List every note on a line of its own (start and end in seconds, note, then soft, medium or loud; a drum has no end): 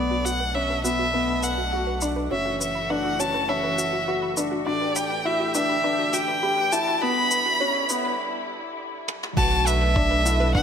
0.00 2.28 B1 medium
0.00 2.29 B2 medium
0.00 6.98 A3 medium
0.00 0.37 B3 medium
0.00 2.29 D4 medium
0.00 0.27 D5 medium
0.11 0.16 F#4 medium
0.25 0.31 F#4 medium
0.25 0.56 F#5 medium
0.25 shaker medium
0.40 0.49 B4 medium
0.54 0.75 C#4 medium
0.54 0.83 E5 medium
0.54 0.60 B5 medium
0.70 0.83 B4 medium
0.84 1.05 B3 medium
0.84 0.90 F#4 medium
0.84 1.45 E5 loud
0.84 shaker medium
0.99 1.04 F#4 medium
1.14 1.55 B3 medium
1.14 1.22 B4 medium
1.28 1.34 B5 medium
1.43 1.56 B4 medium
1.43 2.02 F#5 medium
1.43 shaker medium
1.58 1.63 F#4 medium
1.73 1.78 F#4 medium
1.73 1.93 F#4 medium
1.87 1.96 B4 medium
2.01 2.23 D4 medium
2.01 2.07 B5 medium
2.01 shaker medium
2.16 2.30 B4 medium
2.31 4.64 F#1 medium
2.31 4.64 E3 medium
2.31 2.72 C#4 medium
2.31 2.36 F#4 medium
2.31 4.64 F#4 medium
2.31 2.59 E5 medium
2.46 2.51 F#4 medium
2.60 2.69 B4 medium
2.60 2.92 E5 medium
2.60 shaker medium
2.75 2.81 B5 medium
2.90 3.11 D4 medium
2.90 3.03 B4 medium
2.90 3.22 F#5 medium
3.04 3.10 F#4 medium
3.19 3.40 C#4 medium
3.19 3.25 F#4 medium
3.19 3.51 A5 loud
3.19 shaker medium
3.34 3.43 B4 medium
3.49 3.90 C#4 medium
3.49 4.38 E5 medium
3.49 3.54 B5 medium
3.63 3.77 B4 medium
3.78 3.84 F#4 medium
3.78 shaker medium
3.93 3.98 F#4 medium
4.08 4.28 F#4 medium
4.08 4.16 B4 medium
4.22 4.28 B5 medium
4.37 4.58 D4 medium
4.37 4.50 B4 medium
4.37 shaker medium
4.52 4.57 F#4 medium
4.66 6.99 A1 medium
4.66 9.33 D3 medium
4.66 5.08 D4 medium
4.66 4.72 F#4 medium
4.66 7.00 G4 medium
4.66 4.98 D5 medium
4.81 4.90 B4 medium
4.96 5.27 G5 medium
4.96 5.01 B5 medium
4.96 shaker medium
5.11 5.24 B4 medium
5.25 5.46 E4 medium
5.25 5.31 F#4 medium
5.25 5.55 E5 medium
5.40 5.45 F#4 medium
5.55 5.75 D4 medium
5.55 5.64 B4 medium
5.55 6.15 E5 loud
5.55 shaker medium
5.69 5.75 B5 medium
5.84 6.25 D4 medium
5.84 5.97 B4 medium
5.99 6.04 F#4 medium
6.13 6.19 F#4 medium
6.13 6.74 G5 loud
6.13 shaker medium
6.28 6.37 B4 medium
6.43 6.64 G4 medium
6.43 6.48 B5 medium
6.58 6.71 B4 medium
6.72 6.93 E4 medium
6.72 6.78 F#4 medium
6.72 7.03 A5 loud
6.72 shaker medium
6.87 6.92 F#4 medium
7.02 8.20 E1 medium
7.02 9.35 G3 medium
7.02 7.43 B3 medium
7.02 9.35 E4 medium
7.02 7.11 B4 medium
7.02 8.20 B5 loud
7.17 7.22 B5 medium
7.31 7.44 B4 medium
7.31 shaker medium
7.46 7.51 F#4 medium
7.60 7.81 C#4 medium
7.60 7.66 F#4 medium
7.75 7.84 B4 medium
7.89 8.10 B3 medium
7.89 7.95 B5 medium
7.89 shaker medium
8.05 8.18 B4 medium
9.08 high tom medium
9.23 mid tom medium
9.37 10.63 B1 medium
9.37 10.63 B2 medium
9.37 10.63 A3 medium
9.37 10.63 D4 medium
9.37 9.78 F#4 medium
9.37 9.42 B4 medium
9.37 9.68 A5 loud
9.37 kick loud
9.37 crash loud
9.52 9.61 F#5 medium
9.66 9.79 B4 loud
9.66 10.54 E5 medium
9.66 shaker medium
9.81 9.94 B4 medium
9.96 10.16 D4 medium
9.96 10.09 C#5 medium
9.96 kick loud
10.11 10.16 B4 medium
10.25 10.46 E4 medium
10.25 10.34 F#5 medium
10.25 shaker medium
10.40 10.53 B4 loud
10.55 10.63 D4 medium
10.55 10.63 B4 medium
10.55 10.63 F#5 loud
10.55 kick loud